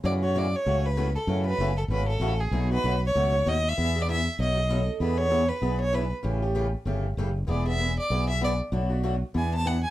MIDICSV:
0, 0, Header, 1, 5, 480
1, 0, Start_track
1, 0, Tempo, 310078
1, 68, Time_signature, 4, 2, 24, 8
1, 15330, End_track
2, 0, Start_track
2, 0, Title_t, "Violin"
2, 0, Program_c, 0, 40
2, 80, Note_on_c, 0, 74, 87
2, 203, Note_off_c, 0, 74, 0
2, 371, Note_on_c, 0, 73, 80
2, 584, Note_on_c, 0, 74, 80
2, 607, Note_off_c, 0, 73, 0
2, 858, Note_on_c, 0, 73, 88
2, 881, Note_off_c, 0, 74, 0
2, 1321, Note_on_c, 0, 71, 83
2, 1344, Note_off_c, 0, 73, 0
2, 1773, Note_off_c, 0, 71, 0
2, 1782, Note_on_c, 0, 69, 70
2, 2233, Note_off_c, 0, 69, 0
2, 2259, Note_on_c, 0, 71, 95
2, 2711, Note_off_c, 0, 71, 0
2, 2750, Note_on_c, 0, 69, 75
2, 2840, Note_off_c, 0, 69, 0
2, 2961, Note_on_c, 0, 71, 91
2, 3210, Note_off_c, 0, 71, 0
2, 3219, Note_on_c, 0, 69, 85
2, 3714, Note_on_c, 0, 68, 74
2, 3737, Note_off_c, 0, 69, 0
2, 4193, Note_off_c, 0, 68, 0
2, 4206, Note_on_c, 0, 71, 100
2, 4683, Note_off_c, 0, 71, 0
2, 4746, Note_on_c, 0, 73, 94
2, 5384, Note_on_c, 0, 75, 101
2, 5408, Note_off_c, 0, 73, 0
2, 5705, Note_on_c, 0, 76, 98
2, 5728, Note_off_c, 0, 75, 0
2, 6215, Note_on_c, 0, 74, 97
2, 6238, Note_off_c, 0, 76, 0
2, 6343, Note_off_c, 0, 74, 0
2, 6357, Note_on_c, 0, 76, 98
2, 6782, Note_off_c, 0, 76, 0
2, 6826, Note_on_c, 0, 75, 87
2, 7516, Note_off_c, 0, 75, 0
2, 7759, Note_on_c, 0, 71, 80
2, 8005, Note_on_c, 0, 73, 99
2, 8028, Note_off_c, 0, 71, 0
2, 8482, Note_on_c, 0, 71, 83
2, 8505, Note_off_c, 0, 73, 0
2, 8976, Note_off_c, 0, 71, 0
2, 8991, Note_on_c, 0, 73, 94
2, 9198, Note_on_c, 0, 71, 79
2, 9221, Note_off_c, 0, 73, 0
2, 9474, Note_off_c, 0, 71, 0
2, 11606, Note_on_c, 0, 74, 71
2, 11859, Note_off_c, 0, 74, 0
2, 11881, Note_on_c, 0, 76, 97
2, 12322, Note_off_c, 0, 76, 0
2, 12374, Note_on_c, 0, 74, 95
2, 12809, Note_off_c, 0, 74, 0
2, 12841, Note_on_c, 0, 76, 96
2, 13022, Note_off_c, 0, 76, 0
2, 13064, Note_on_c, 0, 74, 82
2, 13222, Note_off_c, 0, 74, 0
2, 14511, Note_on_c, 0, 80, 86
2, 14753, Note_off_c, 0, 80, 0
2, 14782, Note_on_c, 0, 81, 101
2, 14965, Note_on_c, 0, 78, 87
2, 14988, Note_off_c, 0, 81, 0
2, 15217, Note_off_c, 0, 78, 0
2, 15226, Note_on_c, 0, 80, 94
2, 15330, Note_off_c, 0, 80, 0
2, 15330, End_track
3, 0, Start_track
3, 0, Title_t, "Steel-string acoustic guitar"
3, 0, Program_c, 1, 25
3, 7078, Note_on_c, 1, 68, 82
3, 7275, Note_off_c, 1, 68, 0
3, 7275, Note_on_c, 1, 69, 90
3, 7753, Note_off_c, 1, 69, 0
3, 15330, End_track
4, 0, Start_track
4, 0, Title_t, "Steel-string acoustic guitar"
4, 0, Program_c, 2, 25
4, 54, Note_on_c, 2, 49, 63
4, 57, Note_on_c, 2, 57, 63
4, 60, Note_on_c, 2, 52, 69
4, 62, Note_on_c, 2, 61, 66
4, 69, Note_on_c, 2, 66, 72
4, 326, Note_off_c, 2, 66, 0
4, 330, Note_off_c, 2, 49, 0
4, 332, Note_off_c, 2, 57, 0
4, 333, Note_off_c, 2, 52, 0
4, 334, Note_off_c, 2, 61, 0
4, 344, Note_on_c, 2, 66, 57
4, 356, Note_on_c, 2, 61, 44
4, 373, Note_on_c, 2, 57, 44
4, 534, Note_off_c, 2, 57, 0
4, 538, Note_off_c, 2, 61, 0
4, 538, Note_on_c, 2, 49, 84
4, 539, Note_off_c, 2, 66, 0
4, 550, Note_on_c, 2, 52, 81
4, 553, Note_on_c, 2, 57, 82
4, 557, Note_on_c, 2, 61, 82
4, 561, Note_on_c, 2, 66, 84
4, 706, Note_off_c, 2, 49, 0
4, 711, Note_off_c, 2, 52, 0
4, 713, Note_off_c, 2, 57, 0
4, 715, Note_off_c, 2, 61, 0
4, 717, Note_off_c, 2, 66, 0
4, 1019, Note_on_c, 2, 49, 64
4, 1023, Note_on_c, 2, 52, 58
4, 1030, Note_on_c, 2, 57, 66
4, 1040, Note_on_c, 2, 66, 67
4, 1041, Note_on_c, 2, 61, 67
4, 1323, Note_off_c, 2, 49, 0
4, 1325, Note_off_c, 2, 52, 0
4, 1329, Note_off_c, 2, 57, 0
4, 1334, Note_off_c, 2, 61, 0
4, 1334, Note_off_c, 2, 66, 0
4, 1500, Note_on_c, 2, 52, 85
4, 1506, Note_on_c, 2, 57, 93
4, 1507, Note_on_c, 2, 49, 88
4, 1513, Note_on_c, 2, 61, 93
4, 1517, Note_on_c, 2, 66, 87
4, 1667, Note_off_c, 2, 52, 0
4, 1670, Note_off_c, 2, 49, 0
4, 1670, Note_off_c, 2, 57, 0
4, 1674, Note_off_c, 2, 61, 0
4, 1676, Note_off_c, 2, 66, 0
4, 1978, Note_on_c, 2, 49, 71
4, 1988, Note_on_c, 2, 57, 73
4, 1990, Note_on_c, 2, 52, 61
4, 2000, Note_on_c, 2, 61, 68
4, 2000, Note_on_c, 2, 66, 70
4, 2240, Note_off_c, 2, 66, 0
4, 2253, Note_off_c, 2, 49, 0
4, 2258, Note_off_c, 2, 57, 0
4, 2259, Note_off_c, 2, 52, 0
4, 2259, Note_on_c, 2, 66, 50
4, 2264, Note_off_c, 2, 61, 0
4, 2286, Note_on_c, 2, 57, 47
4, 2287, Note_on_c, 2, 61, 53
4, 2457, Note_off_c, 2, 66, 0
4, 2470, Note_off_c, 2, 57, 0
4, 2471, Note_off_c, 2, 61, 0
4, 2479, Note_on_c, 2, 52, 85
4, 2485, Note_on_c, 2, 49, 78
4, 2488, Note_on_c, 2, 57, 86
4, 2493, Note_on_c, 2, 61, 83
4, 2494, Note_on_c, 2, 66, 97
4, 2637, Note_off_c, 2, 52, 0
4, 2640, Note_off_c, 2, 49, 0
4, 2642, Note_off_c, 2, 57, 0
4, 2644, Note_off_c, 2, 61, 0
4, 2644, Note_off_c, 2, 66, 0
4, 2948, Note_on_c, 2, 49, 67
4, 2949, Note_on_c, 2, 52, 64
4, 2957, Note_on_c, 2, 57, 63
4, 2962, Note_on_c, 2, 61, 69
4, 2967, Note_on_c, 2, 66, 71
4, 3248, Note_off_c, 2, 49, 0
4, 3249, Note_off_c, 2, 52, 0
4, 3252, Note_off_c, 2, 57, 0
4, 3255, Note_off_c, 2, 61, 0
4, 3258, Note_off_c, 2, 66, 0
4, 3416, Note_on_c, 2, 49, 80
4, 3418, Note_on_c, 2, 52, 78
4, 3420, Note_on_c, 2, 57, 83
4, 3434, Note_on_c, 2, 61, 92
4, 3435, Note_on_c, 2, 66, 97
4, 3585, Note_off_c, 2, 49, 0
4, 3586, Note_off_c, 2, 52, 0
4, 3588, Note_off_c, 2, 57, 0
4, 3594, Note_off_c, 2, 61, 0
4, 3595, Note_off_c, 2, 66, 0
4, 3900, Note_on_c, 2, 47, 68
4, 3907, Note_on_c, 2, 54, 59
4, 3909, Note_on_c, 2, 57, 66
4, 3925, Note_on_c, 2, 63, 72
4, 3931, Note_on_c, 2, 66, 74
4, 4168, Note_off_c, 2, 66, 0
4, 4174, Note_off_c, 2, 47, 0
4, 4178, Note_off_c, 2, 54, 0
4, 4179, Note_off_c, 2, 57, 0
4, 4187, Note_off_c, 2, 63, 0
4, 4187, Note_on_c, 2, 66, 54
4, 4205, Note_on_c, 2, 63, 49
4, 4210, Note_on_c, 2, 57, 45
4, 4381, Note_off_c, 2, 66, 0
4, 4381, Note_on_c, 2, 47, 83
4, 4386, Note_off_c, 2, 57, 0
4, 4387, Note_off_c, 2, 63, 0
4, 4399, Note_on_c, 2, 54, 81
4, 4405, Note_on_c, 2, 57, 90
4, 4405, Note_on_c, 2, 63, 86
4, 4415, Note_on_c, 2, 66, 95
4, 4548, Note_off_c, 2, 47, 0
4, 4557, Note_off_c, 2, 54, 0
4, 4560, Note_off_c, 2, 57, 0
4, 4560, Note_off_c, 2, 63, 0
4, 4565, Note_off_c, 2, 66, 0
4, 4876, Note_on_c, 2, 47, 62
4, 4884, Note_on_c, 2, 54, 63
4, 4892, Note_on_c, 2, 57, 70
4, 4894, Note_on_c, 2, 63, 69
4, 4903, Note_on_c, 2, 66, 75
4, 5172, Note_off_c, 2, 47, 0
4, 5176, Note_off_c, 2, 54, 0
4, 5180, Note_off_c, 2, 57, 0
4, 5181, Note_off_c, 2, 63, 0
4, 5186, Note_off_c, 2, 66, 0
4, 5356, Note_on_c, 2, 47, 87
4, 5362, Note_on_c, 2, 54, 85
4, 5369, Note_on_c, 2, 57, 81
4, 5369, Note_on_c, 2, 63, 89
4, 5372, Note_on_c, 2, 66, 93
4, 5516, Note_off_c, 2, 47, 0
4, 5519, Note_off_c, 2, 54, 0
4, 5522, Note_off_c, 2, 57, 0
4, 5522, Note_off_c, 2, 63, 0
4, 5524, Note_off_c, 2, 66, 0
4, 5844, Note_on_c, 2, 52, 65
4, 5844, Note_on_c, 2, 59, 71
4, 5854, Note_on_c, 2, 62, 66
4, 5861, Note_on_c, 2, 68, 66
4, 6106, Note_off_c, 2, 52, 0
4, 6106, Note_off_c, 2, 59, 0
4, 6111, Note_off_c, 2, 62, 0
4, 6115, Note_off_c, 2, 68, 0
4, 6132, Note_on_c, 2, 68, 54
4, 6146, Note_on_c, 2, 62, 50
4, 6161, Note_on_c, 2, 59, 38
4, 6312, Note_off_c, 2, 59, 0
4, 6314, Note_off_c, 2, 68, 0
4, 6315, Note_off_c, 2, 62, 0
4, 6323, Note_on_c, 2, 52, 82
4, 6331, Note_on_c, 2, 59, 85
4, 6333, Note_on_c, 2, 62, 92
4, 6337, Note_on_c, 2, 68, 85
4, 6479, Note_off_c, 2, 52, 0
4, 6483, Note_off_c, 2, 59, 0
4, 6484, Note_off_c, 2, 62, 0
4, 6486, Note_off_c, 2, 68, 0
4, 6804, Note_on_c, 2, 47, 65
4, 6805, Note_on_c, 2, 57, 66
4, 6808, Note_on_c, 2, 54, 65
4, 6811, Note_on_c, 2, 63, 78
4, 6818, Note_on_c, 2, 66, 76
4, 7096, Note_off_c, 2, 47, 0
4, 7096, Note_off_c, 2, 57, 0
4, 7098, Note_off_c, 2, 54, 0
4, 7100, Note_off_c, 2, 63, 0
4, 7103, Note_off_c, 2, 66, 0
4, 7267, Note_on_c, 2, 47, 84
4, 7279, Note_on_c, 2, 57, 91
4, 7284, Note_on_c, 2, 54, 80
4, 7289, Note_on_c, 2, 63, 90
4, 7291, Note_on_c, 2, 66, 92
4, 7431, Note_off_c, 2, 47, 0
4, 7437, Note_off_c, 2, 57, 0
4, 7440, Note_off_c, 2, 54, 0
4, 7442, Note_off_c, 2, 63, 0
4, 7443, Note_off_c, 2, 66, 0
4, 7755, Note_on_c, 2, 52, 59
4, 7760, Note_on_c, 2, 59, 65
4, 7768, Note_on_c, 2, 62, 67
4, 7771, Note_on_c, 2, 68, 70
4, 8013, Note_off_c, 2, 68, 0
4, 8020, Note_off_c, 2, 62, 0
4, 8021, Note_off_c, 2, 52, 0
4, 8024, Note_off_c, 2, 59, 0
4, 8032, Note_on_c, 2, 68, 51
4, 8039, Note_on_c, 2, 62, 46
4, 8048, Note_on_c, 2, 59, 45
4, 8199, Note_off_c, 2, 59, 0
4, 8199, Note_off_c, 2, 62, 0
4, 8210, Note_on_c, 2, 52, 78
4, 8212, Note_off_c, 2, 68, 0
4, 8218, Note_on_c, 2, 59, 83
4, 8218, Note_on_c, 2, 62, 83
4, 8230, Note_on_c, 2, 68, 88
4, 8383, Note_off_c, 2, 52, 0
4, 8386, Note_off_c, 2, 59, 0
4, 8386, Note_off_c, 2, 62, 0
4, 8392, Note_off_c, 2, 68, 0
4, 8680, Note_on_c, 2, 52, 67
4, 8701, Note_on_c, 2, 59, 72
4, 8704, Note_on_c, 2, 62, 66
4, 8710, Note_on_c, 2, 68, 70
4, 8994, Note_off_c, 2, 52, 0
4, 9005, Note_off_c, 2, 59, 0
4, 9006, Note_off_c, 2, 62, 0
4, 9009, Note_off_c, 2, 68, 0
4, 9174, Note_on_c, 2, 59, 82
4, 9177, Note_on_c, 2, 52, 88
4, 9182, Note_on_c, 2, 62, 85
4, 9184, Note_on_c, 2, 68, 95
4, 9344, Note_off_c, 2, 59, 0
4, 9346, Note_off_c, 2, 52, 0
4, 9348, Note_off_c, 2, 62, 0
4, 9349, Note_off_c, 2, 68, 0
4, 9639, Note_on_c, 2, 49, 63
4, 9644, Note_on_c, 2, 52, 63
4, 9652, Note_on_c, 2, 57, 72
4, 9660, Note_on_c, 2, 67, 65
4, 9661, Note_on_c, 2, 61, 66
4, 9923, Note_off_c, 2, 49, 0
4, 9923, Note_off_c, 2, 67, 0
4, 9926, Note_off_c, 2, 52, 0
4, 9930, Note_off_c, 2, 57, 0
4, 9934, Note_off_c, 2, 61, 0
4, 9942, Note_on_c, 2, 67, 58
4, 9950, Note_on_c, 2, 61, 51
4, 9973, Note_on_c, 2, 57, 43
4, 10127, Note_off_c, 2, 57, 0
4, 10131, Note_off_c, 2, 61, 0
4, 10136, Note_on_c, 2, 49, 75
4, 10138, Note_off_c, 2, 67, 0
4, 10146, Note_on_c, 2, 57, 87
4, 10147, Note_on_c, 2, 52, 80
4, 10150, Note_on_c, 2, 61, 90
4, 10154, Note_on_c, 2, 67, 94
4, 10305, Note_off_c, 2, 49, 0
4, 10310, Note_off_c, 2, 52, 0
4, 10310, Note_off_c, 2, 57, 0
4, 10312, Note_off_c, 2, 61, 0
4, 10314, Note_off_c, 2, 67, 0
4, 10617, Note_on_c, 2, 49, 64
4, 10628, Note_on_c, 2, 52, 59
4, 10631, Note_on_c, 2, 57, 64
4, 10634, Note_on_c, 2, 61, 73
4, 10636, Note_on_c, 2, 67, 71
4, 10922, Note_off_c, 2, 49, 0
4, 10928, Note_off_c, 2, 52, 0
4, 10929, Note_off_c, 2, 57, 0
4, 10931, Note_off_c, 2, 61, 0
4, 10931, Note_off_c, 2, 67, 0
4, 11117, Note_on_c, 2, 52, 81
4, 11120, Note_on_c, 2, 49, 84
4, 11120, Note_on_c, 2, 57, 83
4, 11124, Note_on_c, 2, 61, 90
4, 11136, Note_on_c, 2, 67, 104
4, 11275, Note_off_c, 2, 52, 0
4, 11277, Note_off_c, 2, 49, 0
4, 11277, Note_off_c, 2, 57, 0
4, 11279, Note_off_c, 2, 61, 0
4, 11285, Note_off_c, 2, 67, 0
4, 11561, Note_on_c, 2, 52, 66
4, 11574, Note_on_c, 2, 59, 71
4, 11580, Note_on_c, 2, 62, 66
4, 11591, Note_on_c, 2, 68, 74
4, 11838, Note_off_c, 2, 68, 0
4, 11844, Note_off_c, 2, 52, 0
4, 11851, Note_off_c, 2, 59, 0
4, 11853, Note_off_c, 2, 62, 0
4, 11857, Note_on_c, 2, 68, 53
4, 11880, Note_on_c, 2, 62, 46
4, 11884, Note_on_c, 2, 59, 45
4, 12055, Note_off_c, 2, 68, 0
4, 12056, Note_off_c, 2, 62, 0
4, 12056, Note_on_c, 2, 52, 82
4, 12063, Note_off_c, 2, 59, 0
4, 12074, Note_on_c, 2, 62, 91
4, 12081, Note_on_c, 2, 59, 84
4, 12084, Note_on_c, 2, 68, 84
4, 12225, Note_off_c, 2, 52, 0
4, 12234, Note_off_c, 2, 62, 0
4, 12238, Note_off_c, 2, 59, 0
4, 12239, Note_off_c, 2, 68, 0
4, 12553, Note_on_c, 2, 52, 72
4, 12557, Note_on_c, 2, 59, 66
4, 12557, Note_on_c, 2, 62, 70
4, 12559, Note_on_c, 2, 68, 72
4, 12850, Note_off_c, 2, 52, 0
4, 12852, Note_off_c, 2, 59, 0
4, 12852, Note_off_c, 2, 62, 0
4, 12853, Note_off_c, 2, 68, 0
4, 13021, Note_on_c, 2, 59, 91
4, 13026, Note_on_c, 2, 52, 84
4, 13030, Note_on_c, 2, 62, 100
4, 13036, Note_on_c, 2, 68, 94
4, 13188, Note_off_c, 2, 59, 0
4, 13190, Note_off_c, 2, 52, 0
4, 13192, Note_off_c, 2, 62, 0
4, 13195, Note_off_c, 2, 68, 0
4, 13495, Note_on_c, 2, 47, 64
4, 13508, Note_on_c, 2, 54, 60
4, 13511, Note_on_c, 2, 62, 79
4, 13512, Note_on_c, 2, 66, 69
4, 13513, Note_on_c, 2, 57, 59
4, 13749, Note_off_c, 2, 66, 0
4, 13768, Note_on_c, 2, 66, 56
4, 13771, Note_off_c, 2, 47, 0
4, 13771, Note_off_c, 2, 62, 0
4, 13777, Note_off_c, 2, 54, 0
4, 13780, Note_off_c, 2, 57, 0
4, 13789, Note_on_c, 2, 62, 51
4, 13802, Note_on_c, 2, 57, 43
4, 13968, Note_off_c, 2, 57, 0
4, 13971, Note_off_c, 2, 66, 0
4, 13981, Note_on_c, 2, 47, 78
4, 13982, Note_off_c, 2, 62, 0
4, 13986, Note_on_c, 2, 57, 79
4, 13988, Note_on_c, 2, 54, 86
4, 13993, Note_on_c, 2, 66, 91
4, 14003, Note_on_c, 2, 62, 94
4, 14147, Note_off_c, 2, 47, 0
4, 14150, Note_off_c, 2, 57, 0
4, 14151, Note_off_c, 2, 54, 0
4, 14154, Note_off_c, 2, 66, 0
4, 14158, Note_off_c, 2, 62, 0
4, 14461, Note_on_c, 2, 52, 64
4, 14465, Note_on_c, 2, 59, 70
4, 14468, Note_on_c, 2, 62, 72
4, 14485, Note_on_c, 2, 68, 70
4, 14764, Note_off_c, 2, 52, 0
4, 14767, Note_off_c, 2, 59, 0
4, 14768, Note_off_c, 2, 62, 0
4, 14777, Note_off_c, 2, 68, 0
4, 14942, Note_on_c, 2, 59, 84
4, 14947, Note_on_c, 2, 52, 84
4, 14955, Note_on_c, 2, 62, 85
4, 14957, Note_on_c, 2, 68, 89
4, 15108, Note_off_c, 2, 59, 0
4, 15111, Note_off_c, 2, 52, 0
4, 15114, Note_off_c, 2, 62, 0
4, 15116, Note_off_c, 2, 68, 0
4, 15330, End_track
5, 0, Start_track
5, 0, Title_t, "Fretless electric bass"
5, 0, Program_c, 3, 35
5, 57, Note_on_c, 3, 42, 83
5, 830, Note_off_c, 3, 42, 0
5, 1027, Note_on_c, 3, 37, 74
5, 1797, Note_off_c, 3, 37, 0
5, 1970, Note_on_c, 3, 42, 82
5, 2362, Note_off_c, 3, 42, 0
5, 2450, Note_on_c, 3, 30, 81
5, 2867, Note_off_c, 3, 30, 0
5, 2914, Note_on_c, 3, 32, 80
5, 3337, Note_off_c, 3, 32, 0
5, 3400, Note_on_c, 3, 33, 89
5, 3821, Note_off_c, 3, 33, 0
5, 3890, Note_on_c, 3, 35, 91
5, 4283, Note_off_c, 3, 35, 0
5, 4394, Note_on_c, 3, 35, 83
5, 4801, Note_off_c, 3, 35, 0
5, 4882, Note_on_c, 3, 37, 82
5, 5285, Note_off_c, 3, 37, 0
5, 5360, Note_on_c, 3, 39, 80
5, 5764, Note_off_c, 3, 39, 0
5, 5850, Note_on_c, 3, 40, 92
5, 6610, Note_off_c, 3, 40, 0
5, 6792, Note_on_c, 3, 35, 84
5, 7559, Note_off_c, 3, 35, 0
5, 7742, Note_on_c, 3, 40, 84
5, 8513, Note_off_c, 3, 40, 0
5, 8694, Note_on_c, 3, 35, 76
5, 9468, Note_off_c, 3, 35, 0
5, 9665, Note_on_c, 3, 33, 89
5, 10435, Note_off_c, 3, 33, 0
5, 10610, Note_on_c, 3, 31, 77
5, 11026, Note_off_c, 3, 31, 0
5, 11102, Note_on_c, 3, 30, 82
5, 11513, Note_off_c, 3, 30, 0
5, 11579, Note_on_c, 3, 28, 89
5, 12351, Note_off_c, 3, 28, 0
5, 12541, Note_on_c, 3, 35, 84
5, 13312, Note_off_c, 3, 35, 0
5, 13498, Note_on_c, 3, 35, 94
5, 14271, Note_off_c, 3, 35, 0
5, 14470, Note_on_c, 3, 40, 84
5, 15238, Note_off_c, 3, 40, 0
5, 15330, End_track
0, 0, End_of_file